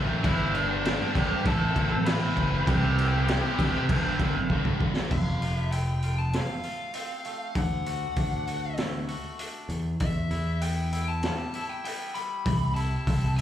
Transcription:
Already playing: picked electric bass A1, distorted electric guitar D3 F#3 A3 D4
0.22 picked electric bass G1, distorted electric guitar G2 D3 G3 B3 D4, lead electric guitar E4 E5, kick, crash
0.54 lead electric guitar D4 D5, crash
0.68 distorted electric guitar G3 B3 D4
0.83 distorted electric guitar G2 D3 G3 B3 D4, snare, crash
1.15 picked electric bass G1, distorted electric guitar D3 G3 B3 D4, lead electric guitar G4 G5, kick, crash
1.31 muted distorted electric guitar stroke
1.45 picked electric bass A1, distorted electric guitar A2 E3 A3 C4 E4, lead electric guitar A4 A5, kick, crash
1.59 distorted electric guitar A3 C4 E4
1.76 picked electric bass A1, distorted electric guitar E3 A3 C4 E4, kick, crash
1.92 muted distorted electric guitar stroke
2.06 distorted electric guitar A2 E3 A3 C4 E4, lead electric guitar B4 B5, snare, crash
2.22 distorted electric guitar A3 C4 E4
2.37 picked electric bass F#1, distorted electric guitar E3 A3 C4 E4, kick, crash
2.67 picked electric bass C2, distorted electric guitar C3 G3 C4 E4, lead electric guitar G4 G5, kick, crash
2.98 crash
3.13 distorted electric guitar G3 C4 E4
3.28 distorted electric guitar C3 G3 C4 E4, snare, crash
3.59 picked electric bass D2, distorted electric guitar C3 G3 C4 E4, kick, crash
3.75 muted distorted electric guitar stroke
3.89 picked electric bass G1, distorted electric guitar G2 D3 G3 B3 D4, kick, crash
4.05 distorted electric guitar G3 B3 D4
4.19 picked electric bass G1, distorted electric guitar D3 G3 B3, kick, crash
4.23 distorted electric guitar D4
4.37 muted distorted electric guitar stroke
4.50 distorted electric guitar G2 D3 G3 B3 D4, kick
4.65 distorted electric guitar G3 B3 D4, kick
4.80 picked electric bass G1, distorted electric guitar D3 G3 B3 D4, kick
4.97 snare
5.11 picked electric bass F1, clean electric guitar F2, lead electric guitar F5, kick, crash
5.42 picked electric bass F1, clean electric guitar F4, open hi-hat
5.56 lead electric guitar E5
5.72 clean electric guitar C4, lead electric guitar G5, open hi-hat
6.02 clean electric guitar F4, open hi-hat
6.18 lead electric guitar A5
6.33 clean electric guitar A3, lead electric guitar F5, snare, open hi-hat
6.63 clean electric guitar F4, open hi-hat
6.94 clean electric guitar C4, open hi-hat
7.25 clean electric guitar A3, open hi-hat
7.55 picked electric bass D2, clean electric guitar D3, lead electric guitar F#5, kick, open hi-hat
7.86 clean electric guitar F#4, open hi-hat
8.16 picked electric bass D2, clean electric guitar D4, kick, open hi-hat
8.47 clean electric guitar F#4, open hi-hat
8.77 clean electric guitar A3, snare, open hi-hat
9.08 clean electric guitar F#4, open hi-hat
9.39 clean electric guitar D4, open hi-hat
9.69 picked electric bass E2, clean electric guitar E2, open hi-hat
10.00 picked electric bass E2, clean electric guitar E2, lead electric guitar E5, kick, open hi-hat
10.31 picked electric bass E2, clean electric guitar E4, open hi-hat
10.61 clean electric guitar B3, lead electric guitar G5, open hi-hat
10.92 clean electric guitar E4, open hi-hat
11.08 lead electric guitar A5
11.23 clean electric guitar G3, snare, open hi-hat
11.54 clean electric guitar E4, open hi-hat
11.69 lead electric guitar G5
11.85 clean electric guitar B3, lead electric guitar G5, open hi-hat
12.14 clean electric guitar G3, lead electric guitar B5, open hi-hat
12.46 picked electric bass C2, clean electric guitar C3, kick, open hi-hat
12.74 clean electric guitar E4, lead electric guitar A5, open hi-hat
13.07 picked electric bass C2, clean electric guitar C4, kick, open hi-hat
13.36 lead electric guitar G5

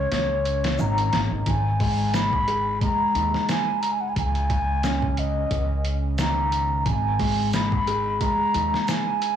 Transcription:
Already playing: felt piano C#4, flute C#5
0.12 upright bass C#2, snare, closed hi-hat
0.45 closed hi-hat
0.64 snare, closed hi-hat
0.79 upright bass G#1, felt piano D#3, flute A#5, shaker
0.98 closed hi-hat
1.13 upright bass G#1, snare, closed hi-hat
1.31 upright bass G#1
1.46 upright bass G#1, flute G#5, kick, closed hi-hat
1.80 felt piano G#3, kick, open hi-hat
2.14 felt piano D#4, flute B5, snare, closed hi-hat, shaker
2.33 kick
2.48 felt piano G#4, closed hi-hat
2.81 felt piano G#3, flute A#5, kick, closed hi-hat
3.15 upright bass D#2, felt piano D#4, closed hi-hat
3.34 snare
3.49 flute G#5, snare, closed hi-hat, shaker
3.81 flute A#5, closed hi-hat
3.92 flute G#5
4.01 flute F#5
4.10 flute G#5
4.16 upright bass C#2, flute G#5, kick, closed hi-hat
4.35 closed hi-hat
4.50 kick, closed hi-hat
4.83 felt piano C#4, snare, closed hi-hat, shaker
5.02 kick
5.17 flute D#5, closed hi-hat
5.51 upright bass C#2, kick, closed hi-hat
5.85 closed hi-hat
6.18 felt piano D#3, flute A#5, snare, closed hi-hat, shaker
6.52 closed hi-hat
6.81 flute A#5
6.86 upright bass G#1, flute G#5, kick, closed hi-hat
7.19 felt piano G#3, kick, open hi-hat
7.53 felt piano D#4, flute B5, snare, closed hi-hat, shaker
7.72 kick
7.87 felt piano G#4, closed hi-hat
8.21 felt piano G#3, flute A#5, kick, closed hi-hat
8.54 upright bass D#2, felt piano D#4, closed hi-hat
8.74 snare
8.82 flute A#5
8.88 flute G#5, snare, closed hi-hat, shaker
9.22 closed hi-hat

